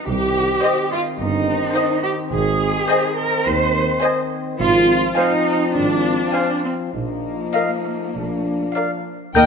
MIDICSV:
0, 0, Header, 1, 12, 480
1, 0, Start_track
1, 0, Tempo, 568720
1, 55, Time_signature, 4, 2, 24, 8
1, 4856, Tempo, 599401
1, 7825, End_track
2, 0, Start_track
2, 0, Title_t, "Glockenspiel"
2, 0, Program_c, 0, 9
2, 7737, Note_on_c, 0, 91, 73
2, 7825, Note_off_c, 0, 91, 0
2, 7825, End_track
3, 0, Start_track
3, 0, Title_t, "Flute"
3, 0, Program_c, 1, 73
3, 7735, Note_on_c, 1, 79, 79
3, 7825, Note_off_c, 1, 79, 0
3, 7825, End_track
4, 0, Start_track
4, 0, Title_t, "Violin section"
4, 0, Program_c, 2, 48
4, 527, Note_on_c, 2, 75, 60
4, 883, Note_off_c, 2, 75, 0
4, 1486, Note_on_c, 2, 75, 65
4, 1841, Note_off_c, 2, 75, 0
4, 2441, Note_on_c, 2, 80, 66
4, 2798, Note_off_c, 2, 80, 0
4, 3399, Note_on_c, 2, 80, 58
4, 3757, Note_off_c, 2, 80, 0
4, 4366, Note_on_c, 2, 80, 59
4, 4730, Note_off_c, 2, 80, 0
4, 5324, Note_on_c, 2, 80, 50
4, 5683, Note_off_c, 2, 80, 0
4, 6297, Note_on_c, 2, 77, 49
4, 6658, Note_off_c, 2, 77, 0
4, 7258, Note_on_c, 2, 77, 42
4, 7616, Note_off_c, 2, 77, 0
4, 7744, Note_on_c, 2, 75, 52
4, 7808, Note_off_c, 2, 75, 0
4, 7825, End_track
5, 0, Start_track
5, 0, Title_t, "Oboe"
5, 0, Program_c, 3, 68
5, 529, Note_on_c, 3, 75, 53
5, 664, Note_off_c, 3, 75, 0
5, 1480, Note_on_c, 3, 75, 51
5, 1616, Note_off_c, 3, 75, 0
5, 2434, Note_on_c, 3, 75, 53
5, 2569, Note_off_c, 3, 75, 0
5, 3410, Note_on_c, 3, 75, 48
5, 3545, Note_off_c, 3, 75, 0
5, 4361, Note_on_c, 3, 77, 50
5, 4496, Note_off_c, 3, 77, 0
5, 5320, Note_on_c, 3, 77, 46
5, 5448, Note_off_c, 3, 77, 0
5, 6294, Note_on_c, 3, 77, 45
5, 6422, Note_off_c, 3, 77, 0
5, 7256, Note_on_c, 3, 77, 39
5, 7384, Note_off_c, 3, 77, 0
5, 7825, End_track
6, 0, Start_track
6, 0, Title_t, "Violin section"
6, 0, Program_c, 4, 48
6, 553, Note_on_c, 4, 75, 55
6, 897, Note_off_c, 4, 75, 0
6, 1489, Note_on_c, 4, 75, 58
6, 1843, Note_off_c, 4, 75, 0
6, 2444, Note_on_c, 4, 75, 59
6, 2799, Note_off_c, 4, 75, 0
6, 3402, Note_on_c, 4, 75, 60
6, 3759, Note_off_c, 4, 75, 0
6, 4365, Note_on_c, 4, 77, 61
6, 4730, Note_off_c, 4, 77, 0
6, 5313, Note_on_c, 4, 77, 49
6, 5677, Note_off_c, 4, 77, 0
6, 6293, Note_on_c, 4, 75, 48
6, 6656, Note_off_c, 4, 75, 0
6, 7257, Note_on_c, 4, 74, 39
6, 7615, Note_off_c, 4, 74, 0
6, 7742, Note_on_c, 4, 79, 62
6, 7825, Note_off_c, 4, 79, 0
6, 7825, End_track
7, 0, Start_track
7, 0, Title_t, "Clarinet"
7, 0, Program_c, 5, 71
7, 521, Note_on_c, 5, 72, 48
7, 656, Note_off_c, 5, 72, 0
7, 1492, Note_on_c, 5, 72, 51
7, 1627, Note_off_c, 5, 72, 0
7, 2436, Note_on_c, 5, 72, 54
7, 2571, Note_off_c, 5, 72, 0
7, 3399, Note_on_c, 5, 72, 51
7, 3534, Note_off_c, 5, 72, 0
7, 4364, Note_on_c, 5, 72, 55
7, 4499, Note_off_c, 5, 72, 0
7, 5330, Note_on_c, 5, 72, 39
7, 5458, Note_off_c, 5, 72, 0
7, 6290, Note_on_c, 5, 75, 43
7, 6418, Note_off_c, 5, 75, 0
7, 7259, Note_on_c, 5, 74, 34
7, 7387, Note_off_c, 5, 74, 0
7, 7825, End_track
8, 0, Start_track
8, 0, Title_t, "Viola section"
8, 0, Program_c, 6, 48
8, 529, Note_on_c, 6, 72, 56
8, 885, Note_off_c, 6, 72, 0
8, 1472, Note_on_c, 6, 72, 59
8, 1834, Note_off_c, 6, 72, 0
8, 2436, Note_on_c, 6, 72, 62
8, 2795, Note_off_c, 6, 72, 0
8, 3392, Note_on_c, 6, 72, 66
8, 3754, Note_off_c, 6, 72, 0
8, 4370, Note_on_c, 6, 72, 59
8, 4733, Note_off_c, 6, 72, 0
8, 5333, Note_on_c, 6, 72, 51
8, 5688, Note_off_c, 6, 72, 0
8, 6299, Note_on_c, 6, 70, 44
8, 6659, Note_off_c, 6, 70, 0
8, 7264, Note_on_c, 6, 70, 48
8, 7619, Note_off_c, 6, 70, 0
8, 7740, Note_on_c, 6, 70, 62
8, 7742, Note_on_c, 6, 58, 59
8, 7804, Note_off_c, 6, 70, 0
8, 7806, Note_off_c, 6, 58, 0
8, 7825, End_track
9, 0, Start_track
9, 0, Title_t, "Cello section"
9, 0, Program_c, 7, 48
9, 55, Note_on_c, 7, 67, 83
9, 754, Note_off_c, 7, 67, 0
9, 767, Note_on_c, 7, 65, 87
9, 834, Note_off_c, 7, 65, 0
9, 1013, Note_on_c, 7, 63, 80
9, 1712, Note_off_c, 7, 63, 0
9, 1719, Note_on_c, 7, 67, 90
9, 1786, Note_off_c, 7, 67, 0
9, 1964, Note_on_c, 7, 68, 84
9, 2665, Note_off_c, 7, 68, 0
9, 2680, Note_on_c, 7, 70, 88
9, 2916, Note_off_c, 7, 70, 0
9, 2917, Note_on_c, 7, 72, 85
9, 3399, Note_off_c, 7, 72, 0
9, 3881, Note_on_c, 7, 65, 93
9, 4335, Note_off_c, 7, 65, 0
9, 4370, Note_on_c, 7, 63, 83
9, 4847, Note_on_c, 7, 62, 82
9, 4848, Note_off_c, 7, 63, 0
9, 5547, Note_off_c, 7, 62, 0
9, 5564, Note_on_c, 7, 60, 66
9, 5628, Note_off_c, 7, 60, 0
9, 5801, Note_on_c, 7, 58, 57
9, 7228, Note_off_c, 7, 58, 0
9, 7736, Note_on_c, 7, 39, 61
9, 7800, Note_off_c, 7, 39, 0
9, 7825, End_track
10, 0, Start_track
10, 0, Title_t, "French horn section"
10, 0, Program_c, 8, 60
10, 50, Note_on_c, 8, 60, 54
10, 55, Note_on_c, 8, 51, 58
10, 3846, Note_off_c, 8, 60, 0
10, 3848, Note_off_c, 8, 51, 0
10, 3868, Note_on_c, 8, 53, 67
10, 3873, Note_on_c, 8, 60, 65
10, 5770, Note_off_c, 8, 53, 0
10, 5773, Note_off_c, 8, 60, 0
10, 5794, Note_on_c, 8, 63, 50
10, 5797, Note_on_c, 8, 53, 47
10, 6754, Note_off_c, 8, 63, 0
10, 6756, Note_off_c, 8, 53, 0
10, 6770, Note_on_c, 8, 62, 45
10, 6771, Note_on_c, 8, 53, 43
10, 7482, Note_off_c, 8, 53, 0
10, 7496, Note_off_c, 8, 62, 0
10, 7728, Note_on_c, 8, 63, 58
10, 7729, Note_on_c, 8, 58, 62
10, 7825, Note_off_c, 8, 58, 0
10, 7825, Note_off_c, 8, 63, 0
10, 7825, End_track
11, 0, Start_track
11, 0, Title_t, "Double bass section"
11, 0, Program_c, 10, 48
11, 53, Note_on_c, 10, 36, 73
11, 430, Note_off_c, 10, 36, 0
11, 1010, Note_on_c, 10, 31, 64
11, 1385, Note_off_c, 10, 31, 0
11, 1967, Note_on_c, 10, 32, 70
11, 2341, Note_off_c, 10, 32, 0
11, 2925, Note_on_c, 10, 39, 73
11, 3303, Note_off_c, 10, 39, 0
11, 3877, Note_on_c, 10, 32, 68
11, 4265, Note_off_c, 10, 32, 0
11, 4859, Note_on_c, 10, 32, 59
11, 5229, Note_off_c, 10, 32, 0
11, 5812, Note_on_c, 10, 34, 53
11, 6196, Note_off_c, 10, 34, 0
11, 6777, Note_on_c, 10, 34, 50
11, 7159, Note_off_c, 10, 34, 0
11, 7736, Note_on_c, 10, 39, 63
11, 7800, Note_off_c, 10, 39, 0
11, 7825, End_track
12, 0, Start_track
12, 0, Title_t, "Tuba"
12, 0, Program_c, 11, 58
12, 54, Note_on_c, 11, 36, 68
12, 430, Note_off_c, 11, 36, 0
12, 1007, Note_on_c, 11, 31, 60
12, 1384, Note_off_c, 11, 31, 0
12, 1957, Note_on_c, 11, 32, 70
12, 2336, Note_off_c, 11, 32, 0
12, 2918, Note_on_c, 11, 39, 72
12, 3299, Note_off_c, 11, 39, 0
12, 3878, Note_on_c, 11, 32, 70
12, 4265, Note_off_c, 11, 32, 0
12, 4850, Note_on_c, 11, 32, 63
12, 5224, Note_off_c, 11, 32, 0
12, 5806, Note_on_c, 11, 34, 56
12, 6192, Note_off_c, 11, 34, 0
12, 6786, Note_on_c, 11, 34, 48
12, 7164, Note_off_c, 11, 34, 0
12, 7732, Note_on_c, 11, 39, 55
12, 7825, Note_off_c, 11, 39, 0
12, 7825, End_track
0, 0, End_of_file